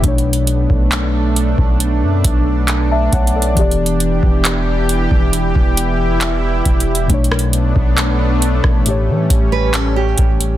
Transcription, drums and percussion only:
0.04 kick loud
0.04 closed hi-hat medium
0.18 closed hi-hat medium
0.33 closed hi-hat medium
0.47 closed hi-hat medium
0.70 kick loud
0.92 clap loud
0.92 closed hi-hat medium
1.36 closed hi-hat medium
1.58 kick loud
1.80 closed hi-hat medium
2.24 kick medium
2.24 closed hi-hat medium
2.68 clap loud
2.68 closed hi-hat medium
3.13 kick loud
3.13 closed hi-hat medium
3.27 closed hi-hat medium
3.42 closed hi-hat medium
3.57 kick loud
3.57 closed hi-hat medium
3.71 closed hi-hat medium
3.86 closed hi-hat medium
4.00 closed hi-hat medium
4.23 kick medium
4.45 clap loud
4.45 closed hi-hat medium
4.89 closed hi-hat medium
5.11 kick loud
5.33 closed hi-hat medium
5.56 kick loud
5.77 closed hi-hat medium
6.21 clap loud
6.21 closed hi-hat medium
6.65 kick medium
6.65 closed hi-hat medium
6.80 closed hi-hat medium
6.95 closed hi-hat soft
7.10 kick loud
7.10 closed hi-hat medium
7.24 closed hi-hat medium
7.32 cross-stick loud
7.39 closed hi-hat medium
7.53 closed hi-hat medium
7.76 kick medium
7.98 clap loud
7.98 closed hi-hat medium
8.42 closed hi-hat medium
8.64 kick loud
8.64 cross-stick medium
8.86 closed hi-hat medium
9.30 kick medium
9.30 closed hi-hat medium
9.74 clap loud
9.74 closed hi-hat medium
10.18 kick medium
10.18 closed hi-hat soft
10.18 open hi-hat medium
10.41 closed hi-hat medium

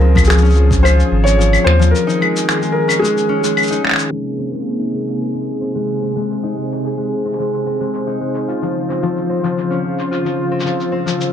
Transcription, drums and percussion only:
0.16 kick loud
0.16 claves medium
0.16 shaker medium
0.24 shaker soft
0.30 finger snap medium
0.30 shaker soft
0.38 shaker soft
0.44 shaker soft
0.46 shaker soft
0.49 shaker soft
0.51 shaker soft
0.54 shaker soft
0.56 shaker soft
0.71 kick medium
0.71 shaker medium
0.85 claves medium
0.85 shaker medium
1.00 shaker soft
1.27 shaker medium
1.41 shaker medium
1.53 claves medium
1.53 shaker soft
1.67 finger snap medium
1.82 shaker medium
1.95 shaker soft
2.09 shaker soft
2.22 claves medium
2.36 shaker medium
2.49 finger snap medium
2.49 shaker soft
2.62 shaker soft
2.89 claves medium
2.89 shaker medium
3.04 shaker medium
3.17 shaker soft
3.44 shaker medium
3.57 claves medium
3.57 shaker soft
3.62 shaker soft
3.67 shaker soft
3.72 shaker soft
3.85 finger snap soft
3.87 finger snap soft
3.89 finger snap soft
3.91 finger snap medium
3.94 finger snap medium
3.96 finger snap medium
3.96 shaker medium
4.27 shaker soft
4.53 shaker medium
4.67 shaker soft
4.80 shaker soft
5.07 shaker medium
5.21 shaker soft
5.35 shaker soft
5.62 shaker medium
5.75 shaker soft
5.90 shaker soft
6.17 shaker medium
6.31 shaker soft
6.44 shaker soft
6.72 shaker medium
6.85 shaker soft
6.99 shaker soft
7.33 shaker medium
7.40 shaker soft
7.53 shaker soft
7.81 shaker medium
7.94 shaker soft
8.08 shaker soft
8.35 shaker medium
8.49 shaker soft
8.62 shaker soft
8.90 shaker medium
9.03 shaker soft
9.17 shaker soft
9.44 shaker medium
9.58 shaker soft
9.71 shaker soft
9.99 shaker medium
10.12 shaker soft
10.26 shaker soft
10.60 shaker medium
10.67 shaker soft
10.80 shaker soft
11.07 shaker medium
11.21 shaker soft

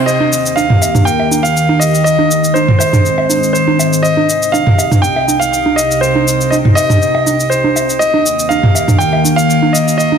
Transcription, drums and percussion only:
0.08 cabasa soft
0.20 high conga medium
0.33 cabasa medium
0.46 cabasa soft
0.57 high conga medium
0.57 cabasa soft
0.70 mid tom medium
0.82 high bongo medium
0.82 cabasa medium
0.95 mid tom medium
0.95 high conga medium
0.95 cabasa soft
1.07 cabasa soft
1.20 high bongo medium
1.31 high conga medium
1.31 cabasa medium
1.45 cabasa soft
1.57 cabasa soft
1.69 high conga medium
1.82 cabasa medium
1.95 cabasa soft
2.06 cabasa soft
2.19 high conga medium
2.31 cabasa medium
2.44 cabasa soft
2.55 high conga medium
2.55 cabasa soft
2.68 mid tom medium
2.80 high bongo medium
2.80 cabasa medium
2.93 mid tom medium
2.93 high conga medium
2.93 cabasa soft
3.06 cabasa soft
3.18 high bongo medium
3.30 high conga medium
3.30 cabasa medium
3.43 cabasa soft
3.55 cabasa soft
3.68 high conga medium
3.79 high bongo medium
3.79 cabasa medium
3.93 cabasa soft
4.05 cabasa soft
4.17 high conga medium
4.30 cabasa medium
4.43 cabasa soft
4.54 high conga medium
4.54 cabasa soft
4.67 mid tom medium
4.78 high bongo medium
4.78 cabasa medium
4.91 mid tom medium
4.91 high conga medium
4.91 cabasa soft
5.04 cabasa soft
5.16 high bongo medium
5.28 high conga medium
5.28 cabasa medium
5.42 cabasa soft
5.54 cabasa soft
5.66 high conga medium
5.78 cabasa medium
5.91 cabasa soft
6.03 cabasa soft
6.15 high conga medium
6.28 cabasa medium
6.41 cabasa soft
6.52 high conga medium
6.52 cabasa soft
6.65 mid tom medium
6.77 high bongo medium
6.77 cabasa medium
6.90 mid tom medium
6.90 high conga medium
6.90 cabasa soft
7.02 cabasa soft
7.15 high bongo medium
7.26 high conga medium
7.26 cabasa medium
7.40 cabasa soft
7.52 cabasa soft
7.64 high conga medium
7.76 high bongo medium
7.76 cabasa medium
7.90 cabasa soft
8.01 cabasa soft
8.14 high conga medium
8.26 cabasa medium
8.39 cabasa soft
8.50 high conga medium
8.50 cabasa soft
8.63 mid tom medium
8.75 high bongo medium
8.75 cabasa medium
8.88 mid tom medium
8.88 high conga medium
8.88 cabasa soft
9.01 cabasa soft
9.13 high bongo medium
9.25 high conga medium
9.25 cabasa medium
9.38 cabasa soft
9.50 cabasa soft
9.62 high conga medium
9.75 cabasa medium
9.88 cabasa soft
10.00 cabasa soft
10.12 high conga medium

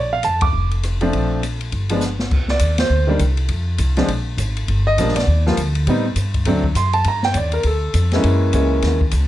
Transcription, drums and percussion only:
0.23 hi-hat pedal medium
0.23 ride medium
0.41 kick medium
0.41 ride medium
0.71 ride soft
0.83 cross-stick medium
0.83 hi-hat pedal soft
0.83 ride medium
1.01 ride soft
1.13 kick soft
1.13 ride medium
1.43 hi-hat pedal soft
1.43 ride medium
1.61 ride soft
1.72 kick soft
1.72 ride medium
1.89 ride medium
2.01 snare soft
2.01 hi-hat pedal soft
2.19 snare medium
2.31 kick medium
2.31 crash medium
2.48 snare soft
2.59 kick soft
2.59 hi-hat pedal medium
2.59 ride medium
2.78 snare medium
2.78 ride medium
3.19 kick soft
3.19 hi-hat pedal medium
3.19 ride medium
3.37 ride soft
3.48 kick soft
3.48 ride medium
3.78 kick soft
3.78 hi-hat pedal medium
3.78 ride medium
3.97 snare soft
3.97 ride soft
4.08 kick soft
4.08 ride medium
4.38 kick soft
4.38 hi-hat pedal medium
4.38 ride medium
4.57 ride soft
4.68 kick soft
4.68 ride medium
4.98 kick soft
4.98 hi-hat pedal medium
4.98 ride medium
5.08 snare soft
5.16 snare soft
5.16 ride medium
5.28 kick soft
5.46 snare soft
5.57 kick soft
5.57 hi-hat pedal soft
5.57 ride medium
5.75 ride soft
5.87 kick soft
5.87 ride medium
6.16 kick soft
6.16 hi-hat pedal medium
6.16 ride medium
6.34 kick soft
6.34 ride soft
6.45 kick soft
6.45 ride medium
6.64 kick medium
6.75 kick soft
6.75 hi-hat pedal medium
6.75 ride medium
6.93 ride soft
7.04 kick soft
7.04 ride medium
7.23 snare medium
7.34 kick soft
7.34 hi-hat pedal soft
7.34 ride medium
7.52 ride soft
7.63 kick soft
7.63 ride medium
7.94 kick soft
7.94 hi-hat pedal medium
7.94 ride medium
8.11 snare soft
8.11 ride soft
8.23 kick soft
8.23 ride medium
8.53 kick soft
8.53 hi-hat pedal medium
8.53 ride medium
8.82 kick soft
8.82 snare soft
8.82 ride medium
9.01 kick medium
9.11 kick soft
9.11 hi-hat pedal soft
9.11 ride medium

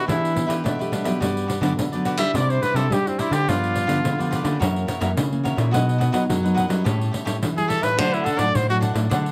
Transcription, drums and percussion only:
0.09 pandeiro medium
0.25 pandeiro soft
0.36 pandeiro medium
0.50 pandeiro medium
0.66 pandeiro medium
0.81 pandeiro soft
0.93 pandeiro medium
1.05 pandeiro medium
1.22 pandeiro medium
1.37 pandeiro soft
1.50 pandeiro medium
1.63 pandeiro medium
1.79 pandeiro medium
1.93 pandeiro soft
2.05 pandeiro medium
2.19 pandeiro medium
2.35 pandeiro medium
2.50 pandeiro soft
2.63 pandeiro medium
2.76 pandeiro medium
2.92 pandeiro medium
3.07 pandeiro soft
3.19 pandeiro medium
3.33 pandeiro medium
3.49 pandeiro medium
3.64 pandeiro soft
3.76 pandeiro medium
3.89 pandeiro medium
4.05 pandeiro medium
4.20 pandeiro soft
4.33 pandeiro medium
4.45 pandeiro medium
4.62 pandeiro medium
4.76 pandeiro soft
4.88 pandeiro medium
5.01 pandeiro medium
5.17 pandeiro medium
5.33 pandeiro soft
5.45 pandeiro medium
5.58 pandeiro medium
5.74 pandeiro medium
5.89 pandeiro soft
6.01 pandeiro medium
6.14 pandeiro medium
6.30 pandeiro medium
6.45 pandeiro soft
6.57 pandeiro medium
6.70 pandeiro medium
6.86 pandeiro medium
7.01 pandeiro soft
7.14 pandeiro medium
7.27 pandeiro medium
7.43 pandeiro medium
7.58 pandeiro soft
7.70 pandeiro medium
7.83 pandeiro medium
7.99 pandeiro medium
8.14 pandeiro soft
8.26 pandeiro medium
8.39 pandeiro medium
8.55 pandeiro medium
8.70 pandeiro soft
8.82 pandeiro medium
8.96 pandeiro medium
9.11 pandeiro medium
9.26 pandeiro soft

